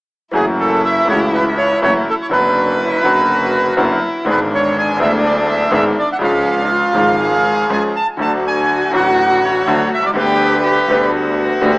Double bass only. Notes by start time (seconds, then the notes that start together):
0.33 F#1
1.08 C#2
1.82 F#1
2.31 F#1
3.04 F#1
3.77 F#1
4.26 G#1
5.00 D2
5.72 G#1
6.21 C#2
6.95 G#1
7.68 C#2
8.19 D2
8.92 A1
9.66 D2
9.92 C2
10.15 D2
10.89 D2
11.63 D2